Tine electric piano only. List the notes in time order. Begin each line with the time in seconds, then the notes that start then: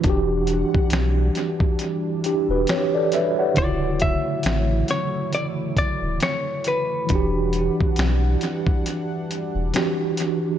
0.01 E3 D4
0.07 F#4 G4
2.26 D4 G4
2.51 F#4 B4
2.70 G4 C#5
2.95 A4 D5
3.14 B4 E5
3.39 C#5 F#5
3.54 C#3 D3
3.60 E4 F4
3.69 F#4
7.07 E3 D4
7.13 F#4 G4
9.74 E3 D4 F#4
9.78 G4